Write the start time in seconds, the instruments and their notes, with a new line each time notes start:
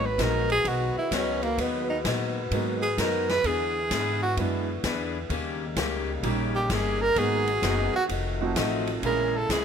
Already playing: upright bass G#1, trombone section D#3 G#3 F#4 B4
0.06 tenor saxophone B4
0.18 upright bass A#1, steel-string acoustic guitar G#2 F#3 B3 D#4, upright piano F#3 G#3 A#3 B3 D#4, tenor saxophone A#4, kick, snare, hi-hat pedal, ride
0.50 tenor saxophone G#4, ride
0.64 upright bass B1, steel-string acoustic guitar G#2 F#3 B3 D#4, tenor saxophone F#4, kick, ride
0.96 tenor saxophone E4, muted upright bass stroke
1.11 upright bass C#2, steel-string acoustic guitar G#2 F#3 B3 D#4, tenor saxophone C#4, kick, snare, hi-hat pedal, ride
1.43 tenor saxophone A#3, ride
1.58 upright bass D#2, steel-string acoustic guitar G#2 F#3 B3, tenor saxophone B3, kick, ride
1.62 steel-string acoustic guitar D#4
1.90 tenor saxophone D#4
2.05 steel-string acoustic guitar G#2 F#3 B3 D#4, upright bass A#2, kick, snare, hi-hat pedal, ride
2.51 upright bass G#2, steel-string acoustic guitar G#2 F#3 B3 D#4, upright piano F#3 G#3 A#3 B3 D#4, kick, ride
2.82 tenor saxophone G#4, ride
2.98 upright bass F#2, steel-string acoustic guitar G#2 F#3 B3 D#4, tenor saxophone A#4, kick, snare, hi-hat pedal, ride
3.29 tenor saxophone B4, snare, ride
3.43 upright bass E2, trombone section D3 G#3 B3 E4, steel-string acoustic guitar E3 B3 D4 G#4, tenor saxophone G#4, kick, ride
3.91 upright bass G#2, steel-string acoustic guitar E3 B3 D4 G#4, kick, snare, hi-hat pedal, ride
4.22 tenor saxophone F#4
4.37 upright bass F#2, steel-string acoustic guitar E3 B3 D4 G#4, upright piano F#3 G#3 B3 D4 E4, kick, ride
4.84 upright bass E2, steel-string acoustic guitar E3 B3 D4 G#4, kick, snare, hi-hat pedal, ride
5.30 upright bass D#2, trombone section C#3 G3 A#3 D#4, steel-string acoustic guitar D#3 A#3 C#4 G4, kick, ride
5.76 upright bass C#2, steel-string acoustic guitar D#3 A#3 C#4 G4, kick, snare, hi-hat pedal, ride
6.23 upright bass A#1, steel-string acoustic guitar D#3 A#3 C#4 G4, upright piano G3 A#3 C#4 D#4 G4, kick, ride
6.56 tenor saxophone G4
6.70 upright bass G1, steel-string acoustic guitar D#3 A#3 C#4 G4, tenor saxophone G#4, kick, snare, hi-hat pedal, ride
7.02 tenor saxophone A#4
7.15 upright bass G#1, steel-string acoustic guitar G#2 F#3 B3 D#4, trombone section D#3 G#3 B3 F#4, upright piano G#3 A#3 B3 D#4 F#4, tenor saxophone G#4, kick, ride
7.47 ride
7.62 upright bass F#1, steel-string acoustic guitar G#2 F#3 B3 D#4, kick, snare, hi-hat pedal, ride
7.95 tenor saxophone F#4, muted upright bass stroke
8.09 upright bass F1, steel-string acoustic guitar F3 A3 D#4 F#4, trombone section F3 A3, kick, ride
8.41 upright piano F3 A3 C4 D#4 F#4
8.56 upright bass A1, steel-string acoustic guitar F3 A3 D#4 F#4, kick, snare, hi-hat pedal, ride
8.87 ride
9.03 upright bass A#1, steel-string acoustic guitar A#2 E3 G#3 C#4, trombone section C#3 G#3 A#3 E4, upright piano G#3 A#3 C#4 E4 G#4, tenor saxophone A#4, kick, ride
9.37 tenor saxophone A4
9.49 upright bass C#2, steel-string acoustic guitar A#2 E3 G#3 C#4, tenor saxophone G#4, kick, snare, hi-hat pedal, ride